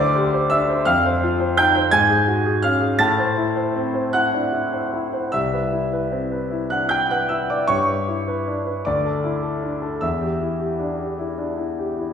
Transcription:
0.00 0.84 D2 medium
0.00 0.26 C5 medium
0.00 0.47 D5 medium
0.00 0.51 D6 loud
0.15 0.44 G4 medium
0.33 0.61 C5 medium
0.50 0.79 D4 soft
0.50 0.84 E5 medium
0.50 0.86 E6 medium
0.69 0.87 C5 soft
0.85 1.89 F2 medium
0.85 1.53 F5 medium
0.85 1.57 F6 loud
1.05 1.33 C5 soft
1.23 1.51 F4 medium
1.40 1.68 C5 soft
1.57 1.86 D#4 medium
1.57 1.91 G5 medium
1.57 1.92 G6 loud
1.76 1.93 C5 soft
1.91 2.95 G#2 medium
1.91 2.59 G#5 medium
1.91 2.62 G#6 loud
2.10 2.38 G#4 soft
2.27 2.56 F#4 soft
2.46 2.74 G#4 medium
2.62 2.92 C#4 soft
2.62 2.97 F5 medium
2.62 2.98 F6 medium
2.81 2.99 G#4 soft
2.99 5.27 A2 medium
2.99 4.08 A5 medium
2.99 4.12 A6 loud
3.19 3.48 C5 soft
3.37 3.67 E4 soft
3.56 3.86 C5 soft
3.76 4.05 C4 medium
3.94 4.24 C5 soft
4.13 4.44 E4 soft
4.13 5.28 F#5 medium
4.13 5.31 F#6 medium
4.34 4.52 D4 soft
4.53 4.83 E4 soft
4.72 5.04 C5 soft
4.93 5.24 E4 soft
5.13 5.32 C5 soft
5.32 7.66 C2 medium
5.32 6.66 E5 medium
5.32 6.69 E6 medium
5.53 5.84 B4 soft
5.73 6.03 E4 soft
5.93 6.23 B4 soft
6.11 6.42 C4 soft
6.32 6.62 B4 soft
6.51 6.81 E4 soft
6.70 6.89 D4 soft
6.70 6.89 F#5 soft
6.70 6.89 F#6 medium
6.89 7.21 E4 soft
6.89 7.08 G5 medium
6.89 7.09 G6 medium
7.11 7.42 B4 soft
7.11 7.29 F#5 soft
7.11 7.30 F#6 medium
7.29 7.61 E4 soft
7.29 7.48 E5 soft
7.29 7.49 E6 medium
7.50 7.69 B4 soft
7.50 7.68 D5 soft
7.50 7.69 D6 medium
7.67 8.82 G2 soft
7.67 8.82 C#5 medium
7.67 8.86 C#6 medium
7.88 8.20 B4 soft
8.08 8.40 E4 soft
8.28 8.59 B4 soft
8.47 8.78 D4 soft
8.66 8.86 B4 soft
8.85 9.98 D2 medium
8.85 9.98 D5 medium
8.85 10.01 D6 medium
9.05 9.35 A4 soft
9.24 9.54 E4 soft
9.43 9.74 A4 soft
9.62 9.94 D4 soft
9.82 10.02 A4 soft
10.01 12.13 E2 soft
10.01 11.96 E5 medium
10.01 11.99 E6 medium
10.22 10.53 G4 soft
10.41 10.72 E4 soft
10.60 10.91 G4 soft
10.79 11.11 D4 soft
10.99 11.31 G4 soft
11.19 11.50 E4 soft
11.38 11.58 D4 soft
11.57 11.90 E4 soft
11.79 12.12 G4 soft
11.99 12.13 E4 soft

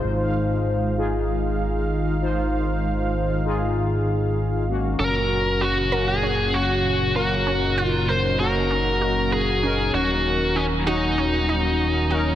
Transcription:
0.00 4.95 G#3 medium
0.00 0.94 D#4 medium
0.00 4.95 D#4 medium
0.00 0.94 F4 medium
0.00 0.94 C5 loud
0.04 4.96 G#1 medium
0.04 4.95 D#3 medium
0.04 4.95 F5 medium
0.97 2.17 D#4 medium
0.97 2.17 F4 medium
0.97 2.17 G#4 loud
2.21 3.41 D#4 medium
2.21 3.41 F4 medium
2.21 3.41 C5 loud
3.45 4.65 D#4 medium
3.45 4.65 F4 medium
3.45 4.65 G#4 loud
4.68 5.88 A#3 medium
4.68 5.88 C#4 medium
4.68 5.88 F#4 medium
4.99 9.91 F#1 medium
4.99 9.90 A#2 medium
4.99 9.90 C#3 medium
4.99 12.35 F#3 medium
4.99 7.44 C#4 medium
4.99 5.25 C#4 medium
4.99 12.35 F#4 medium
4.99 5.63 A#4 loud
5.61 5.86 F#4 medium
5.61 6.09 F#4 medium
5.92 7.12 A#3 medium
5.92 7.12 C#4 medium
5.92 7.12 F#4 loud
5.92 6.17 A#4 loud
6.08 6.56 G#4 loud
6.23 6.48 C#4 medium
6.54 6.79 F#4 medium
6.54 7.15 F#4 loud
7.16 8.36 A#3 medium
7.16 8.36 C#4 medium
7.16 7.80 F#4 medium
7.16 7.41 A#4 medium
7.16 8.36 A#4 loud
7.47 7.72 C#4 medium
7.47 9.92 D#4 medium
7.78 8.12 F4 medium
7.78 7.93 F#4 loud
8.09 8.34 A#4 medium
8.09 8.37 C5 loud
8.39 9.59 A#3 medium
8.39 9.59 C#4 medium
8.39 9.59 F#4 loud
8.39 9.32 A#4 loud
8.71 8.96 C#4 medium
9.01 9.27 F#4 medium
9.32 9.90 G#4 loud
9.32 9.62 A#4 medium
9.63 9.93 C#4 medium
9.63 10.83 C#4 medium
9.63 10.83 D#4 medium
9.63 10.83 A#4 loud
9.94 12.35 D#1 medium
9.94 12.35 D#3 medium
9.94 12.35 A#3 medium
9.94 10.19 C#4 medium
9.94 12.35 C#4 medium
9.94 10.58 F#4 loud
10.56 10.64 C#4 medium
10.56 10.81 D#4 medium
10.87 12.07 C#4 medium
10.87 12.07 D#4 medium
10.87 12.35 D#4 medium
10.87 12.07 F#4 loud
10.87 11.12 F#4 loud
11.18 11.43 C#4 medium
11.49 11.74 D#4 medium
12.11 12.35 C#4 medium
12.11 12.35 D#4 medium
12.11 12.35 F#4 medium
12.11 12.35 A#4 loud

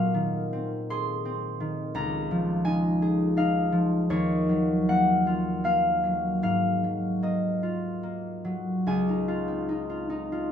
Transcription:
0.00 1.99 A#2 medium
0.00 2.64 A#4 soft
0.00 2.29 D#5 medium
0.00 3.36 F5 medium
0.14 1.59 D#3 soft
0.53 1.24 C4 soft
0.90 3.01 G#4 medium
0.90 1.99 C6 loud
1.25 1.98 C4 soft
1.60 1.99 D#3 soft
1.95 4.12 C#2 medium
1.95 5.85 A#5 medium
2.31 3.71 F3 soft
2.65 3.36 D#4 medium
2.65 4.12 G#5 medium
3.02 4.13 G#4 medium
3.37 7.27 D#4 soft
3.37 5.63 F5 medium
3.72 7.62 F3 medium
4.10 6.45 D#2 medium
4.10 6.45 C#5 medium
4.49 6.02 F#3 soft
4.89 5.63 A#3 soft
4.89 8.79 F#5 medium
5.27 7.62 F4 medium
5.64 7.21 A#3 soft
5.64 6.42 F5 medium
6.03 6.83 F#3 soft
6.43 8.91 G#2 soft
6.43 10.33 F5 medium
6.84 8.43 F#3 soft
7.22 8.02 A#3 soft
7.22 10.52 D#5 medium
7.63 9.27 F4 soft
8.03 8.91 A#3 soft
8.45 8.91 F#3 soft
8.87 10.52 C#2 medium
8.87 10.52 G#4 medium
8.87 10.52 G#5 medium
9.09 9.68 D#4 soft
9.28 9.88 F4 soft
9.48 10.52 C4 soft
9.69 10.08 D#4 soft
9.90 10.25 F4 soft
10.10 10.51 D#4 medium
10.32 10.52 F4 medium

